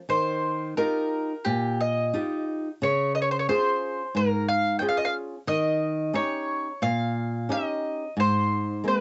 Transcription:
0.09 nylon-string guitar D#3, mandolin C5
0.77 nylon-string guitar D#4 F4 G4, mandolin A#4
1.45 nylon-string guitar A#2, mandolin G4
1.81 mandolin D#5
2.14 nylon-string guitar D#4 F4 G4
2.82 nylon-string guitar C#3, mandolin C#5
3.15 mandolin D#5
3.22 mandolin C#5
3.31 mandolin C5
3.39 mandolin C#5
3.49 nylon-string guitar C#4 F4 G#4, mandolin C5
4.15 nylon-string guitar G#2, mandolin A#4
4.49 mandolin F5
4.79 nylon-string guitar C#4 F4 G#4, mandolin G5
4.89 mandolin F5
4.97 mandolin D#5
5.05 mandolin F5
5.47 nylon-string guitar D#3, mandolin D#5
6.13 nylon-string guitar C#4 D#4 G4, mandolin C#5
6.82 nylon-string guitar A#2, mandolin F5
7.49 nylon-string guitar C#4 D#4 G4, mandolin D#5
8.17 nylon-string guitar G#2, mandolin C5
8.84 nylon-string guitar G#3 A#3 C4
8.88 mandolin A#4

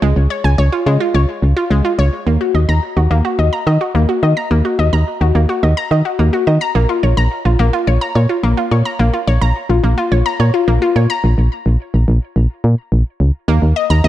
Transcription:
0.02 fm bass C#2, synth arpeggio sound G#3
0.16 fm bass C#2
0.30 synth arpeggio sound C#5
0.44 fm bass C#2, synth arpeggio sound G#5
0.58 fm bass C#2, synth arpeggio sound C#5
0.72 synth arpeggio sound F4
0.86 fm bass C#3, synth arpeggio sound G#3
1.00 synth arpeggio sound F4
1.14 fm bass C#2, synth arpeggio sound C#5
1.42 fm bass C#2
1.57 synth arpeggio sound F4
1.70 fm bass C#2, synth arpeggio sound G#3
1.85 synth arpeggio sound F4
1.99 fm bass C#2, synth arpeggio sound C#5
2.27 fm bass D#2, synth arpeggio sound A#3
2.41 synth arpeggio sound F#4
2.54 fm bass D#2, synth arpeggio sound D#5
2.69 fm bass D#2, synth arpeggio sound A#5
2.97 fm bass D#2, synth arpeggio sound F#4
3.11 fm bass D#2, synth arpeggio sound A#3
3.25 synth arpeggio sound F#4
3.39 fm bass D#2, synth arpeggio sound D#5
3.53 synth arpeggio sound A#5
3.67 fm bass D#3, synth arpeggio sound D#5
3.81 synth arpeggio sound F#4
3.95 fm bass D#2, synth arpeggio sound A#3
4.09 synth arpeggio sound F#4
4.23 fm bass D#3, synth arpeggio sound D#5
4.37 synth arpeggio sound A#5
4.51 fm bass D#2, synth arpeggio sound A#3
4.65 synth arpeggio sound F#4
4.79 fm bass D#2, synth arpeggio sound D#5
4.93 fm bass D#2, synth arpeggio sound A#5
5.21 fm bass D#2, synth arpeggio sound F#4
5.35 fm bass D#2, synth arpeggio sound A#3
5.49 synth arpeggio sound F#4
5.63 fm bass D#2, synth arpeggio sound D#5
5.77 synth arpeggio sound A#5
5.91 fm bass D#3, synth arpeggio sound D#5
6.05 synth arpeggio sound F#4
6.19 fm bass D#2, synth arpeggio sound A#3
6.33 synth arpeggio sound F#4
6.47 fm bass D#3, synth arpeggio sound D#5
6.61 synth arpeggio sound A#5
6.75 fm bass A#1, synth arpeggio sound A#3
6.89 synth arpeggio sound F4
7.03 fm bass A#1, synth arpeggio sound C#5
7.17 fm bass A#1, synth arpeggio sound A#5
7.45 fm bass A#1, synth arpeggio sound F4
7.59 fm bass A#1, synth arpeggio sound A#3
7.73 synth arpeggio sound F4
7.87 fm bass A#1, synth arpeggio sound C#5
8.01 synth arpeggio sound A#5
8.15 fm bass A#2, synth arpeggio sound C#5
8.29 synth arpeggio sound F4
8.43 fm bass A#1, synth arpeggio sound A#3
8.57 synth arpeggio sound F4
8.71 fm bass A#2, synth arpeggio sound C#5
8.85 synth arpeggio sound A#5
8.99 fm bass A#1, synth arpeggio sound A#3
9.13 synth arpeggio sound F4
9.27 fm bass A#1, synth arpeggio sound C#5
9.41 fm bass A#1, synth arpeggio sound A#5
9.69 fm bass A#1, synth arpeggio sound F4
9.84 fm bass A#1, synth arpeggio sound A#3
9.98 synth arpeggio sound F4
10.12 fm bass A#1, synth arpeggio sound C#5
10.26 synth arpeggio sound A#5
10.40 fm bass A#2, synth arpeggio sound C#5
10.54 synth arpeggio sound F4
10.68 fm bass A#1, synth arpeggio sound A#3
10.82 synth arpeggio sound F4
10.96 fm bass A#2, synth arpeggio sound C#5
11.10 synth arpeggio sound A#5
11.24 fm bass A#1
11.38 fm bass A#1
11.66 fm bass A#1
11.94 fm bass A#1
12.08 fm bass A#1
12.36 fm bass A#1
12.64 fm bass A#2
12.92 fm bass A#1
13.20 fm bass C#2
13.48 fm bass D#2, synth arpeggio sound A#3
13.62 fm bass D#2
13.76 synth arpeggio sound D#5
13.90 fm bass D#2, synth arpeggio sound A#5
14.04 fm bass D#2, synth arpeggio sound D#5

